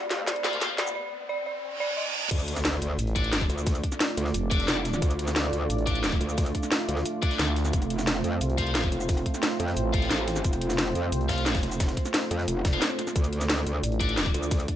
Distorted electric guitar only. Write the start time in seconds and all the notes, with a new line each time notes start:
0.44 F4 C5 F5
0.61 F4 C5 F5
3.15 D4 A4 D5
3.32 D4 A4 D5
4.51 D4 A4 D5
4.68 D4 A4 D5
5.87 D4 A4 D5
6.03 D4 A4 D5
7.22 D4 A4 D5
7.39 D4 A4 D5
8.58 F4 C5 F5
8.75 F4 C5 F5
9.93 F4 C5 F5
10.10 F4 C5 F5
11.29 F4 C5 F5
11.46 F4 C5 F5
12.73 F4 C5 F5
14.00 D4 A4 D5
14.17 D4 A4 D5